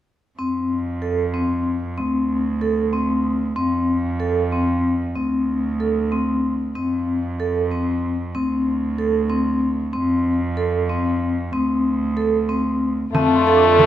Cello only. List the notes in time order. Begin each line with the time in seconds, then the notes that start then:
0.39 F2
1.99 D2
3.56 F2
5.15 D2
6.75 F2
8.36 D2
9.95 F2
11.53 D2
13.15 F2